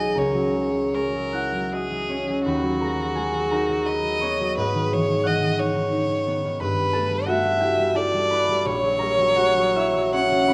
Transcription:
Already playing: B1 F#3 B3 D#4 E4 F#4 G#4 B4 D#5 F#5 G#5 B5
0.15 C#2 A#4 C#5 A#5
0.34 F#3
0.53 G#3
0.73 F#3
0.94 G#3 A#4 C#5 C#6
1.14 F#3
1.33 E4 F#5 F#6
1.54 F#3
1.72 F#4 G#4 D#5 D#6
1.91 F#3
2.09 C#4 C#5 C#6
2.29 F#3
2.45 D#2 F#4 B4 B5
2.63 F#3
2.81 G#3 A#4 A#5
2.99 F#3
3.15 G#3 G#4 G#5
3.35 F#3
3.51 D#4 A#4 A#5
3.69 F#3
3.86 F#4 B4 D#5 B5
4.05 F#3
4.21 B3 C#5 C#6
4.41 F#3
4.57 G#2 B4 D#5 D#6
4.74 D#3
4.92 E3 C#5
5.08 D#3
5.24 E3 D#5 F#5 F#6
5.41 D#3
5.58 D#4 C#5
5.75 D#3
5.92 D#4
6.09 D#3
6.27 B3
6.45 D#3
6.60 G2 B4 B5
6.79 G3
6.93 A3 A4 A5
7.11 G3
7.26 A3 F#4 E5 F#5
7.44 G3
7.60 E4 G4 G5
7.79 G3
7.95 E4 A4 D5 A5
8.14 G3
8.31 E4 B4 B5
8.48 G3
8.65 A#1 C#5 C#6
8.83 F#3
8.99 G3 A#4 A#5
9.18 F#3
9.36 G3 F#4 F#5
9.57 F#3
9.76 E4 E5 E6
9.96 F#3
10.12 C#4 C#5 F#5 C#6
10.31 F#3
10.48 C#4 B4 B5

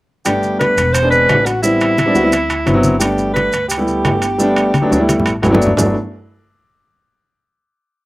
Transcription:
0.25 G1 G3 A3 B3 D4 G4, high conga, high timbale, maracas
0.43 high conga, maracas
0.59 B4, high conga, high timbale, maracas
0.77 E1, high conga, high timbale, maracas
0.93 C5, high conga, high timbale, maracas
1.02 G#3 B3 C4 D4
1.10 B4, high conga, maracas
1.29 A1, high conga, high timbale, low timbale, maracas
1.46 F#4, high conga, high timbale, maracas
1.63 G3 B3 C4 E4, high conga, maracas
1.81 high conga, high timbale, maracas
1.98 high conga, high timbale, maracas
2.06 G3 B3 C4 D4
2.14 D2 G3 B3 C4 F#4, high conga, maracas
2.23 G3 B3 C4 E4
2.32 high conga, high timbale, maracas
2.50 high conga, high timbale, maracas
2.66 G1 F#3 B3 C4 E4, high conga, high timbale, maracas
2.74 F#3 B3 C4 E4
2.83 high conga, maracas
2.99 G3 A3 B3 D4 G4, high conga, high timbale, maracas
3.18 high conga, maracas
3.34 B4, high conga, high timbale, maracas
3.52 D2, high conga, high timbale, maracas
3.68 G4, high conga, high timbale, maracas
3.78 G3 A3 B3 E4
3.88 high conga, maracas
4.05 G1, high conga, high timbale, low timbale, maracas
4.22 high conga, high timbale, maracas
4.38 G3 A3 B3 D4, high conga, maracas
4.56 high conga, high timbale, maracas
4.74 high conga, high timbale, maracas
4.81 F#3 A3 B3 D4
4.91 D2 F#3 A3 B3 D4, maracas
4.99 G3 A3 B3 E4
5.09 high conga, high timbale, maracas
5.20 low conga
5.26 A1, high timbale, maracas
5.42 G1 F#3 A3 B3 E4 G5, low conga, high timbale, low timbale, maracas
5.51 F#3 A3 B3 D4, low conga
5.60 D5, maracas
5.67 low conga
5.77 G1 F#3 A3 B3 D4, low conga, low timbale, maracas

